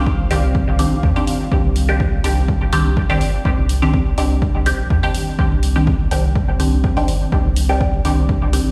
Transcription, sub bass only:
Already playing: C2
0.31 C2
0.92 A#1
1.03 D#2
1.52 C2
2.24 C2
2.73 C2
3.21 G1
3.45 C2
4.18 C2
4.79 A#1
4.90 D#2
5.39 C2
6.11 C2
6.60 C2
7.08 G1
7.32 C2
8.05 C2
8.66 A#1

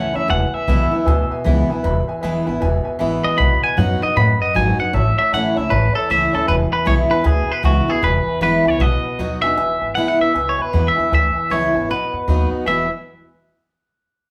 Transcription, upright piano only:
0.14 C#5 E5 A5
0.29 B4 E5 G#5
0.54 B4 E5 G#5
0.68 B4 E5 G#5
0.92 B4 E5 G#5
1.05 B4 E5 G#5
1.30 B4 E5 G#5
1.44 B4 E5 G#5
1.69 B4 E5 G#5
1.83 B4 E5 B5
2.07 B4 E5 G#5
2.21 B4 E5 G#5
2.44 B4 E5 G#5
2.60 B4 E5 G#5
2.83 B4 E5 G#5
2.99 B4 E5 G#5
3.23 B4 E5 G#5
3.37 B4 D#5 F#5
3.61 B4 D#5 F#5
3.76 B4 D#5 F#5
4.01 B4 D#5 F#5
4.15 B4 D#5 F#5
4.40 B4 D#5 F#5
4.54 B4 D#5 G#5
4.78 B4 D#5 F#5
4.93 C#5 E5 A5
5.17 C#5 E5 A5
5.31 C#5 E5 A5
5.55 C#5 E5 A5
5.69 C#5 E5 A5
5.93 C#5 E5 B5
6.07 C#5 A5
6.32 C#5 E5 A5
6.46 B4 E5 G#5
6.71 B4 E5 G#5
6.84 B4 E5 G#5
7.10 B4 E5 G#5
7.22 B4 E5 G#5
7.48 B4 E5 B5
7.63 B4 E5 G#5
7.88 B4 E5 G#5
8.01 B4 E5 G#5
8.27 B4 E5 G#5
8.40 B4 E5 F#5
8.64 B4 E5 G#5
8.78 B4 D#5 F#5
9.03 B4 D#5 F#5
9.18 B4 D#5 F#5
9.42 B4 D#5 G#5
9.56 B4 E5 G#5
9.80 B4 E5 G#5
9.96 B4 E5 G#5
10.20 B4 E5 B5
10.33 B4 E5 G#5
10.57 B4 E5 G#5
10.72 B4 E5 F#5
10.95 B4 E5 G#5
11.10 B4 E5 G#5
11.35 B4 E5 G#5
11.50 B4 E5 G#5
11.73 B4 E5 G#5
11.89 B4 D#5 F#5
12.12 B4 D#5 F#5
12.27 B4 D#5 F#5
12.51 B4 D#5 F#5
12.65 B4 E5 G#5

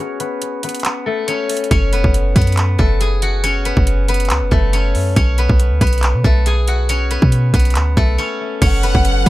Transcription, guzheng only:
Already playing: B3 F#4 G#4 B4 F#5 G#5
0.00 C#4 C#5
0.20 B3 B4
0.63 B3 B4
1.06 A3 A4
1.28 C#4 C#5
1.71 C#4 C#5
1.93 B3 B4
2.36 B3 B4
2.79 A3 A4
3.01 G#4 G#5
3.22 F#4 F#5
3.44 C#4 C#5
3.65 B3 B4
4.08 B3 B4
4.51 A3 A4
4.73 C#4 C#5
5.16 C#4 C#5
5.38 B3 B4
5.81 B3 B4
6.24 A3 A4
6.46 G#4 G#5
6.68 F#4 F#5
6.89 C#4 C#5
7.11 B3 B4
7.54 B3 B4
7.97 A3 A4
8.18 C#4 C#5
8.62 C#4 C#5
8.83 B3 B4
9.26 B4

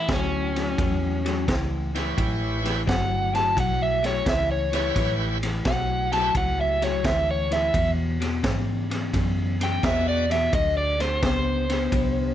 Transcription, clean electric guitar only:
0.08 A2 F#3
0.56 A2 F#3
0.78 A2 F#3
1.25 A2 F#3
1.48 A2 E3
1.95 A2 E3
2.17 A2 E3
2.64 A2 E3
2.86 A2 F#3
3.33 A2 F#3
3.56 A2 F#3
4.03 A2 F#3
4.26 A2 E3
4.72 A2 E3
4.96 A2 E3
5.43 A2 E3
5.66 A2 F#3
6.12 A2 F#3
6.35 A2 F#3
6.82 A2 F#3
7.04 A2 E3
7.51 A2 E3
7.73 E2 B2
8.20 E2 B2
8.43 E2 C#3
8.90 E2 C#3
9.13 E2 C#3
9.60 E2 C#3
9.83 E2 B2
10.30 E2 B2
10.53 D3 A3
11.00 D3 A3
11.22 D3 B3
11.70 D3 B3
11.92 D3 B3

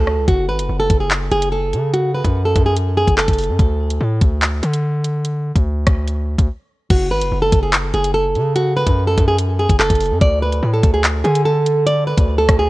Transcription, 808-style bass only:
Already playing: D2
0.18 C#2
0.28 F#1
0.49 G#1
0.59 F#1
0.69 F#1
0.90 F#1
1.32 F#1
1.73 C#3
2.25 F#2
2.56 F#2
3.07 F#1
3.28 F#1
3.49 F#2
3.59 D2
4.00 A2
4.21 D2
4.63 D3
5.56 D2
5.87 D2
6.38 D2
6.90 F#1
7.11 G#1
7.21 F#1
7.32 F#1
7.52 F#1
7.94 F#1
8.35 C#3
8.87 F#2
9.18 F#2
9.70 F#1
9.90 F#1
10.11 F#2
10.21 D2
10.63 A2
10.83 D2
11.25 D3
12.18 D2
12.49 D2

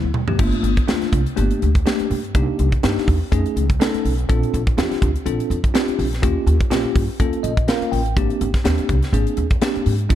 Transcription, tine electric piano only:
Already playing: F3 A3 B3 E4
0.28 F3 A3 B3 G4
0.39 A3 A#3 D4 F4
0.88 A3 A#3 D4 F4
1.36 A3 A#3 D4 G4
1.86 A3 A#3 D4 G4
2.35 A#3 D4 D#4 G4
2.83 A#3 D4 D#4 G4
3.32 A3 C#4 D#4 G#4
3.80 A3 C#4 D#4 A4
4.29 C4 D4 F4 A4
4.78 C4 D4 F4 G4
5.26 C4 D4 F4 A4
5.74 C4 D4 F4 G4
6.22 A#3 C#4 F4 G4
6.71 A#3 C#4 F4 G4
7.20 A#3 C#4 F4 A4
7.43 D#5
7.68 A#3 C#4 F4 A#4 F5
7.92 G5
8.17 A#3 C4 D4 G4
8.64 A#3 C4 D4 G4
9.13 A#3 C4 D4 G#4
9.62 A#3 C4 D4 G4
10.09 G#3 C4 D4 F4

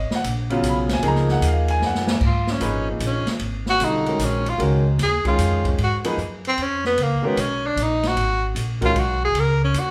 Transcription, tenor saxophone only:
2.26 F4
2.51 C#4
2.91 A#3
3.06 C#4
3.70 F#4
3.85 D#4
4.24 C#4
4.49 F4
5.03 G#4
5.28 F4
5.68 C#4
5.83 F#4
6.48 C4
6.62 C#4
6.86 B3
7.02 A#3
7.27 B3
7.40 C#4
7.67 D4
7.82 D#4
8.08 F#4
8.86 F4
9.00 F#4
9.25 G#4
9.40 A#4
9.64 C#4
9.80 F#4

